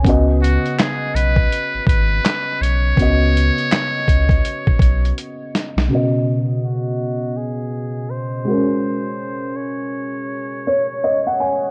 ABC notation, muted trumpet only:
X:1
M:4/4
L:1/8
Q:"Swing 16ths" 1/4=82
K:G#phr
V:1 name="Muted trumpet"
z F G B2 B2 c- | c6 z2 | z2 F2 G2 ^B2- | ^B2 c4- c z |]